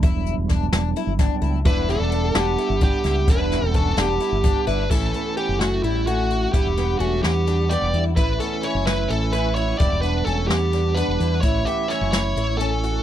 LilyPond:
<<
  \new Staff \with { instrumentName = "Lead electric guitar" } { \time 7/8 \key a \mixolydian \tempo 4 = 129 r2. r8 | b'8 a'4 g'4 g'4 | b'4 a'8 g'4. b'8 | a'4 g'8 fis'8 e'8 fis'4 |
g'4 fis'8 g'4 d''8. r16 | b'8 a'8 cis''8 b'8 a'8 b'8 cis''8 | d''8 b'8 a'8 g'4 b'4 | cis''8 e''8 cis''8 cis''4 a'4 | }
  \new Staff \with { instrumentName = "Twelve-string acoustic guitar" } { \time 7/8 \key a \mixolydian e'4 d'8 d'8 e'8 d'8 e'8 | e'4 d'8 d'8 e'8 d'8 e'8 | e'4 d'8 d'8 e'8 d'8 e'8 | e'8 b8 cis'4 e'8 cis'8 fis'8 |
e'8 b8 cis'4 d'8 b8 e'8 | e'8 b8 cis'4 e'8 cis'8 fis'8 | e'8 b8 cis'4 d'8 b8 e'8 | e'8 b8 cis'4 e'8 cis'8 fis'8 | }
  \new Staff \with { instrumentName = "Clean electric guitar" } { \time 7/8 \key a \mixolydian r2. r8 | d'8 d'4 b4 b4 | d'4 cis'8 b4. d'8 | cis'4 b8 a8 g8 a4 |
b4 a8 b4 g'8. r16 | e'8 cis'8 e'8 e'8 cis'8 e'8 e'8 | g'8 d'8 cis'8 b4 d'4 | e'8 g'8 e'8 e'4 cis'4 | }
  \new Staff \with { instrumentName = "Tonewheel organ" } { \time 7/8 \key a \mixolydian r2 r8 g''4 | r2. r8 | r2. r8 | r2. r8 |
r2. r8 | r2. r8 | r2. r8 | r2. r8 | }
  \new Staff \with { instrumentName = "Tonewheel organ" } { \time 7/8 \key a \mixolydian <fis g b d'>2.~ <fis g b d'>8 | <g b d' fis''>2.~ <g b d' fis''>8~ | <g b d' fis''>2.~ <g b d' fis''>8 | <e a cis' e'>2.~ <e a cis' e'>8 |
<g b d' fis''>2.~ <g b d' fis''>8 | <e a cis' e'>2.~ <e a cis' e'>8 | <g b d' fis''>2.~ <g b d' fis''>8 | <e a cis' e'>2.~ <e a cis' e'>8 | }
  \new Staff \with { instrumentName = "Fingered electric bass" } { \clef bass \time 7/8 \key a \mixolydian e,,8. e,,8. e,,8 r16 g,,8 r16 cis,8 | e,,8. e,,8. e,,8 r16 g,,8 r16 cis,8 | e,,8. e,,8. e,,8 r16 g,,8 r16 g,,8 | a,,8 r8. fis,,8. a,,4. |
e,,16 e,,8. e,,8 e,4~ e,16 e,,16 e,8 | a,,8 r8. fis,,8. a,,4. | e,,16 e,,8. e,,8 e,4~ e,16 e,,16 e,8 | a,,8 r8. fis,,8. a,,4. | }
  \new DrumStaff \with { instrumentName = "Drums" } \drummode { \time 7/8 <hh bd>8 hh8 <hh bd sn>8 <hh sn>8 hh8 <hh bd sn>8 hh8 | <hh bd>8 <hh sn>8 hh8 <hh sn>8 hh8 <hh bd>8 <hh sn>8 | <hh bd>8 <hh sn>8 <hh bd>8 <hh sn>8 hh8 <hh bd>8 hh8 | <cymc bd>8 hh8 hh8 <hh sn>8 hh8 hh8 hh8 |
<hh bd>8 <hh sn>8 hh8 <hh sn>8 <hh sn>8 hh8 hh8 | <hh bd>8 hh8 hh8 <hh sn>8 hh8 <hh sn>8 hh8 | <hh bd>8 hh8 hh8 <hh sn>8 <hh sn>8 hh8 hh8 | <hh bd>8 hh8 <hh sn>8 <hh sn>8 hh8 hh8 hh8 | }
>>